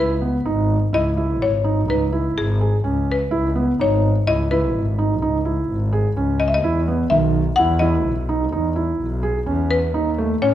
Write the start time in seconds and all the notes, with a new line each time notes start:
Already playing: E4
0.00 C#2 B4
0.21 B3
0.46 G#1 D#4
0.93 C#2 E4 D#5
1.17 E4
1.42 G#1 C#5
1.64 D#4
1.88 C#2 D#4 B4
2.12 E4
2.37 G#1 G#4
2.61 G#4
2.84 C#2 C#4
3.12 B4
3.31 C#2 E4
3.56 B3
3.79 G#1 D#4 C#5
4.27 C#2 E4 D#5
4.51 E4 B4
4.75 G#1
4.98 D#4
5.22 C#2 D#4
5.45 E4
5.70 G#1
5.92 G#4
6.16 C#2 C#4
6.40 D#5
6.48 E5
6.54 D#5
6.64 E2 E4
6.88 B3
7.10 B1 D#3 E5
7.56 E2 E4 F#5
7.79 E4 D#5
8.06 B1
8.29 D#4
8.52 E2 D#4
8.76 E4
9.00 B1
9.23 G#4
9.46 E2 C#4
9.71 B4
9.94 D#2 D#4
10.18 A3
10.42 A2 C#4 C#5